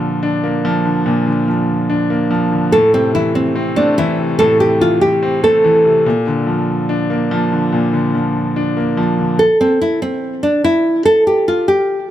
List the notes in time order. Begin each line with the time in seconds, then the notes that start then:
Already playing: A#2 D3 F3
0.23 D4
0.44 A#3
0.65 F3
0.85 D3
1.06 A#2
1.27 D3
1.48 F3
1.90 D4
2.10 A#3
2.31 F3
2.52 D3
2.72 A2 A4
2.94 C3 C4
3.14 E3 E4
3.35 C4
3.56 C4
3.76 A3 D4
3.98 E3 E4
4.19 C3
4.39 A2 A4
4.60 C3 G4
4.81 E3 F4
5.01 G4
5.23 C4
5.44 A3 A4
5.64 E3
5.85 C3
6.06 A#2
6.27 D3
6.47 F3
6.89 D4
7.10 A#3
7.31 F3
7.52 D3
7.72 A#2
7.93 D3
8.15 F3
8.56 D4
8.77 A#3
8.97 F3
9.19 D3
9.39 A4
9.61 C4
9.82 E4
10.02 C4
10.43 D4
10.64 E4
11.05 A4
11.27 G4
11.48 F4
11.68 G4